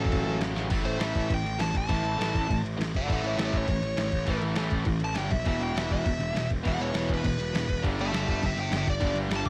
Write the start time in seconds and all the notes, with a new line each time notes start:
Already playing: A1 F#2 C#3 F#3 A4 A5
0.00 F#2
0.05 kick
0.12 A1, kick, crash
0.26 A1
0.40 A1, snare, crash
0.55 A1 F#2 C#3 F#3, snare
0.70 A1 A2 E3 A3, kick, crash
0.85 A1 C5, crash
0.99 A1 A2 E3 A3 E5, snare, crash
1.15 A1, kick, crash
1.29 A1 A2 E3, kick, crash
1.34 G5
1.44 A1, crash
1.59 A1 A2 E3 A5, snare, crash
1.74 A1 A5, kick, crash
1.89 A1 A2 E3 A3, kick, crash
2.04 A1, crash
2.17 A1 A2 E3 A3, crash
2.22 snare
2.34 A1, kick, crash
2.48 A1 A2 E3, kick, crash
2.63 A1, crash
2.78 A1 A2 E3, snare, crash
2.94 F#1 D5 F#5, kick, crash
3.08 A1 A2 E3 A3, kick, crash
3.12 A4 F#5
3.23 A1 C#5, crash
3.29 E5
3.36 A1 A2 E3 A3, snare, crash
3.44 C#5 E5
3.53 A1, kick, crash
3.57 C#5
3.68 A1 A2 E3, kick, crash
3.82 A1, crash
3.96 A1 A2 E3, snare, crash
4.12 A1, kick, crash
4.27 A1 A2 E3 A3, kick, crash
4.41 A1, crash
4.55 A1 A2 E3 A3, snare, crash
4.71 A1, kick, crash
4.85 A1 A2 E3, kick, crash
5.00 A1, crash
5.04 A5
5.15 G1 G2 D3 G3 G5, snare, crash
5.31 B1 E5, kick, crash
5.45 E1 E2 B2 E3 E5, kick, crash
5.59 E1 G5, crash
5.74 E1 E2 B2 E3, snare, crash
5.78 E5
5.90 E1 E5, kick, crash
6.05 E1 E2 B2, kick, crash
6.19 E1, crash
6.35 E1 E2 B2, snare, crash
6.50 E1, kick, crash
6.64 E1 E2 B2 E3, kick, crash
6.68 F#5
6.79 E1 C#5, crash
6.94 E1 E2 B2 E3, snare, crash
7.09 E1, kick, crash
7.14 B4
7.24 E1 E2 B2 B4, kick, crash
7.39 E1, crash
7.54 E1 E2 B2, snare, crash
7.69 E1, kick, crash
7.83 G1 G2 D3 G3, kick, crash
7.98 G1 E5 A5, crash
8.13 G1 G2 D3 G3 E5 A5, snare, crash
8.28 G1 E5 A5, kick, crash
8.43 G1 G2 D3 E5 G5, kick, crash
8.56 G1 E5, crash
8.60 G5
8.70 G1 G2 D3, snare, crash
8.77 E5 G5
8.87 G1 D5, kick, crash
9.00 G1 G2 D3 G3, kick, crash
9.14 G1, crash
9.28 G1 G2 D3 G3, snare, crash
9.36 A5
9.45 G1 D6, kick, crash